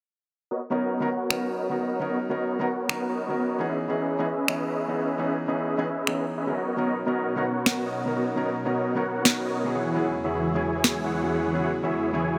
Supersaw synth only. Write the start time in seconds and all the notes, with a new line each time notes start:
0.51 B3 F#4 A#4 C#5 D#5
0.71 B3 F#4 A#4 C#5 D#5
1.01 B3 F#4 A#4 C#5 F#5
1.50 B3 F#4 A#4 C#5 D#5
1.80 B3 F#4 A#4 C#5 D#5
2.10 B3 F#4 A#4 C#5 D#5
2.30 B3 F#4 A#4 C#5 D#5
2.60 B3 F#4 A#4 C#5 F#5
3.09 B3 F#4 A#4 C#5 D#5
3.39 B3 F#4 A#4 C#5 D#5
3.69 C#4 G#4 B4 D#5 E5
3.89 C#4 G#4 B4 D#5 E5
4.19 C#4 G#4 B4 D#5 E5
4.68 C#4 G#4 B4 D#5 E5
4.98 C#4 G#4 B4 D#5 E5
5.28 C#4 G#4 B4 D#5 E5
5.48 C#4 G#4 B4 D#5 E5
5.78 C#4 G#4 B4 D#5 E5
6.37 C#4 G#4 B4 D#5 E5
6.47 C#4 G#4 B4 D#5 E5
6.57 B3 F#4 A#4 C#5 D#5
6.87 B3 F#4 A#4 C#5 D#5
7.06 B3 F#4 A#4 C#5 D#5
7.37 B3 F#4 A#4 C#5 F#5
7.86 B3 F#4 A#4 C#5 D#5
8.16 B3 F#4 A#4 C#5 D#5
8.46 B3 F#4 A#4 C#5 D#5
8.65 B3 F#4 A#4 C#5 D#5
8.96 B3 F#4 A#4 C#5 F#5
9.45 B3 F#4 A#4 C#5 D#5
9.75 E3 E4 G#4 C#5 F#5
10.05 E3 E4 G#4 C#5 F#5
10.24 E3 E4 G#4 C#5 E5
10.55 E3 E4 G#4 C#5 G#5
11.04 E3 E4 G#4 C#5 F#5
11.34 E3 E4 G#4 C#5 F#5
11.64 E3 E4 G#4 C#5 F#5
11.83 E3 E4 G#4 C#5 E5
12.14 E3 E4 G#4 C#5 G#5